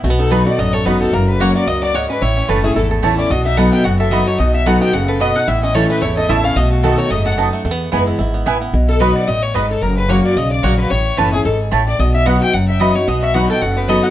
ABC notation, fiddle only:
X:1
M:4/4
L:1/8
Q:"Swing" 1/4=221
K:Bmix
V:1 name="Fiddle"
z A B =d ^d c B A | ^A B c =d ^d =d c B | c2 B G A z2 =d | d e f =g f e d c |
d e f =g f B d f | e d c B c d e =f | d F A c d f z2 | z8 |
z A B =d ^d c B A | ^A B c =d ^d =d c B | c2 B G A z2 =d | d e f =g f e d c |
d e f =g f B d f |]